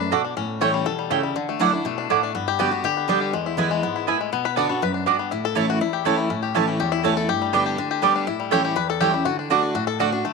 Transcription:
Already playing: F#2 B4
0.00 D4
0.11 B2 A3 F#4 A4 D5 F#5
0.25 D4
0.37 A2 C#4
0.61 E3 G3 A3 C#4 E4 C#5 G5
0.74 G3
0.86 B2 A4
0.99 G3
1.10 C#3 A3 E4 C#5 G5
1.23 G3
1.36 D3
1.49 A3
1.59 F#3 A3 D4 E4 D5 F#5
1.72 D4 E4
1.85 B2 A3
1.98 D4
2.10 A2 A3 E4 D5 F#5
2.23 D4
2.35 G2 B3
2.48 G4
2.59 D3 G3 B3 F#4 G4 D5 G5
2.71 B3 G4
2.84 D3 G4
2.97 B3
3.08 D3 G3 B3 D4 G4 D5 G5
3.21 G4
3.33 E2 G#3
3.46 E4
3.57 E3 G#3 B3 E4 B4 G#5
3.71 G#3
3.83 G#2 B3
3.96 E4
4.07 A2 B3 E4 B4 G#5
4.21 G#3
4.33 B2 B3
4.45 B4
4.56 D3 B3 D4 F#4 A4 D5 F#5
4.69 B3 D4 F#4
4.82 F#2 B4
4.94 D4
5.06 G2 B3 D4 F#4 D5 F#5
5.19 B3
5.31 A2 E4
5.45 A4
5.55 E3 A3 C#4 E4 C#5 A5
5.70 F#4
5.81 E2 E4
5.93 G4
6.05 E3 A3 C#4 E4 C#5 A5
6.18 E4
6.30 A2 C#4
6.43 G4
6.55 E3 A3 C#4 E4 C#5 A5
6.68 C#4
6.80 E2 G4
6.92 E4
7.03 E3 A3 C#4 E4 C#5 A5
7.17 A4
7.29 G2 G4
7.42 G3
7.53 D3 G3 B3 D4 G4 D5 G5
7.66 G4
7.78 D3 D4
7.91 G4
8.02 D3 G3 B3 G4 D5 G5
8.16 D4
8.27 A2 E4
8.40 G3
8.51 E3 G3 A3 C#4 E4 G4 C#5 G5
8.65 G4
8.76 E2 B4
8.90 A4
9.00 E3 G3 A3 C#4 E4 G4 C#5 G5
9.13 C#4 E4
9.25 D3 F#4
9.39 D4
9.50 D3 A3 D4 F#4 D5 F#5
9.63 D4
9.75 A2 F#4
9.87 A4
9.99 D3 A3 D4 F#4 A4 D5 F#5
10.12 D4 F#4
10.25 D3 A3

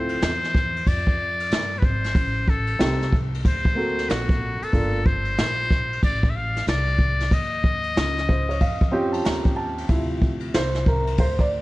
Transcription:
Already playing: D2 C4 E4 F4 A4 C5
0.09 ride
0.22 E2, snare, hi-hat pedal, ride
0.44 snare
0.55 kick, snare
0.76 ride
0.87 F2 D5, kick, ride
1.07 kick
1.40 ride
1.51 G2, snare, hi-hat pedal, ride
1.79 G#1 B4, kick
1.84 C5
2.04 snare, ride
2.15 A1, kick, ride
2.48 A4, kick
2.67 ride
2.79 C2 C4 D#4 G4 A4, snare, hi-hat pedal, ride
3.02 snare
3.12 kick
3.34 ride
3.45 D2 C5, kick, ride
3.65 kick
3.75 A#3 C4 F#4 A4
3.98 snare, ride
4.09 A#1 F#4, snare, hi-hat pedal, ride
4.29 kick
4.62 A4, muted upright bass stroke, ride
4.72 G1 A#3 D4 F4 A4, kick, ride
5.06 C5, kick
5.25 ride
5.38 A#1, snare, hi-hat pedal, ride
5.71 kick, snare
5.93 ride
6.03 A1 D5, kick, ride
6.23 kick
6.30 E5
6.36 F5
6.56 snare, ride
6.67 C2 D5, snare, hi-hat pedal, ride
6.99 kick
7.20 snare, ride
7.31 D#2 D#5, kick, ride
7.64 kick
7.83 ride
7.96 C#2, snare, hi-hat pedal, ride
8.18 snare
8.29 C5, kick
8.49 C#5, ride
8.60 F2 F5, kick, ride
8.81 kick
8.92 C4 C#4 F4 G4 G5
9.13 A5, ride
9.24 D#2 A#5, snare, hi-hat pedal, ride
9.45 kick
9.56 A5
9.78 ride
9.88 D2 C3 E4 F4, kick, ride
10.22 kick
10.40 ride
10.54 C2 C5, snare, hi-hat pedal, ride
10.75 snare
10.86 A#4, kick
11.07 ride
11.18 D2 C5, kick, ride
11.39 D5, kick

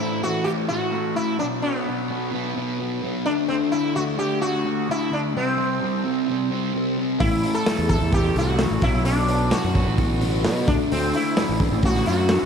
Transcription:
Already playing: A2 E4
0.00 E3 A3
0.22 A2 E3 A3 F#4
0.44 E3 A3 G4
0.49 A2
0.68 A2 E3 A3 F#4
0.91 E3 A3
1.15 A2 E3 A3 E4
1.39 B2 F#3 B3 D4
1.62 B2 F#3 B3
1.86 F#3 B3
2.08 B2 F#3 B3
2.32 B2 F#3 B3
2.56 B2 F#3 B3
2.79 F#3 B3
3.02 B2 F#3 B3
3.26 D3 A3 D4
3.48 D3 A3 C4 D4
3.72 A3 D4 E4
3.95 D3 A3 D4 F#4
4.18 D3 A3 D4 G4
4.41 D3 A3 D4 F#4
4.64 A3 D4
4.88 D3 A3 D4 E4
5.11 A3 D4
5.35 C3 G3 C4
5.57 G3 C4
5.81 C3 G3 C4
6.04 C3 G3 C4
6.27 C3 G3 C4
6.51 G3 C4
6.73 C3 G3 C4
6.97 G3 C4
7.19 A1 A2 E3 A3 E4, kick, open hi-hat
7.42 E3 A3, open hi-hat
7.54 A4
7.66 A2 E3 A3, snare, open hi-hat
7.79 E2
7.89 A2 E3 A3 A4, kick, open hi-hat
8.01 E2
8.12 A2 E3 A3 G4, kick, open hi-hat
8.34 C2 E3 A3, open hi-hat
8.38 F#4
8.57 A2 E3 A3, snare, open hi-hat
8.71 A1
8.81 B1 B2 F#3 B3 E4, kick, open hi-hat
9.04 B2 F#3 B3 D4, open hi-hat
9.28 F#3 B3, open hi-hat
9.51 B2 F#3 B3 F#4, snare, open hi-hat
9.64 F#2
9.74 B2 F#3 B3, kick, open hi-hat
9.87 A1
9.97 B2 F#3 B3, kick, open hi-hat
10.21 F#3 B3, open hi-hat
10.43 B2 F#3 B3, snare, open hi-hat
10.68 D2 D3 A3 D4, kick, open hi-hat
10.90 D2 D3 A3 C4 D4, open hi-hat
11.13 A3 D4 E4, open hi-hat
11.36 D3 A3 D4, snare, open hi-hat
11.49 A1
11.59 D3 A3 D4, kick, open hi-hat
11.72 A1
11.83 D3 A3 D4 F#4, kick, open hi-hat
11.95 snare
12.06 F#2 A3 D4 F#4, open hi-hat
12.29 D3 A3, snare, open hi-hat
12.33 D4

